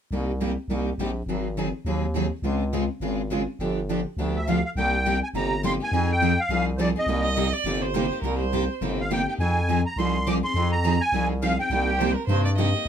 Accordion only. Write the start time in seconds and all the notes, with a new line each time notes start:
4.36 E5
4.48 F5
4.65 F5
4.78 G5
5.23 G#5
5.36 A#5
5.66 C6
5.83 G#5
6.12 G5
6.40 F5
6.78 C5 D5
6.99 D#5
9.01 F5
9.13 G5
9.29 G5
9.40 G#5
9.86 A#5
9.98 C6
10.26 D6
10.44 C6
10.72 A#5
11.01 G#5
11.42 F5
11.59 G5